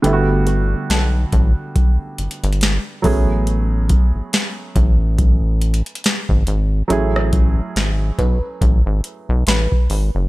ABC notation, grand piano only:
X:1
M:4/4
L:1/8
Q:"Swing 16ths" 1/4=70
K:F#m
V:1 name="Grand piano"
[D,=G,A,B,EF]6- [D,G,A,B,EF] [F,A,B,C^G]- | [F,A,B,CG]6- [F,A,B,CG] z | [F,A,CEG]8 |]